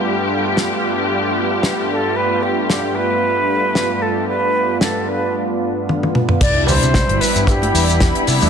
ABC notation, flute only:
X:1
M:4/4
L:1/8
Q:"Swing 16ths" 1/4=113
K:C
V:1 name="Flute"
z6 z A | B G G B4 A | B2 A B z4 | d c2 B G3 z |]